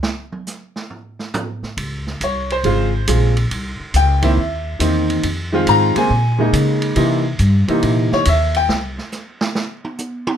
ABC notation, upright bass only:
X:1
M:4/4
L:1/8
Q:"Swing" 1/4=139
K:Cphr
V:1 name="Upright bass" clef=bass
z8 | D,,2 C,,2 A,,,2 B,,,2 | C,, z D,,2 ^D,,2 =E,,2 | F,,2 A,, z B,,2 D,2 |
C,2 G,, z B,, z ^D,,2 | C,, z6 z |]